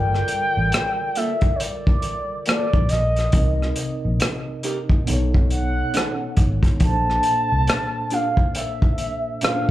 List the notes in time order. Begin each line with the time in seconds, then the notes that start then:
Already playing: G1 D3 G3 F4 A4 A#4 D5 G5
0.15 cross-stick
0.28 closed hi-hat
0.57 A1
0.72 cross-stick, closed hi-hat
1.15 A#3 F4 A4 E5, closed hi-hat
1.41 kick, closed hi-hat
1.56 C#5
1.60 D5, closed hi-hat
1.87 kick
2.02 closed hi-hat
2.46 A#3 F4 A4 D5, cross-stick, closed hi-hat
2.73 A#1, kick
2.89 A#1 D#5, cross-stick, closed hi-hat
3.16 cross-stick, closed hi-hat
3.31 C2 C3 C4 D#4, kick, closed hi-hat
3.36 A#4 D#5
3.62 cross-stick
3.76 closed hi-hat
4.05 A#1
4.20 cross-stick, closed hi-hat
4.63 D#4 G4 A#4, closed hi-hat
4.89 kick
5.04 B2 B3 D#4, closed hi-hat
5.09 B1 A4 C#5
5.34 kick
5.51 F#5, closed hi-hat
5.94 C#4 D#4 A4, cross-stick, closed hi-hat
6.37 G#1, kick, closed hi-hat
6.63 kick, cross-stick, closed hi-hat
6.78 A#1 A#2 A#3 D4 A5, kick, closed hi-hat
6.84 A4 C5
7.10 cross-stick
7.23 closed hi-hat
7.52 C2
7.67 cross-stick, closed hi-hat
8.10 D4 F4 A4 F5, closed hi-hat
8.37 kick
8.55 E5, closed hi-hat
8.82 kick
8.98 closed hi-hat
9.41 A#2 A#3 D4 F4 A4 C5 F5, cross-stick, closed hi-hat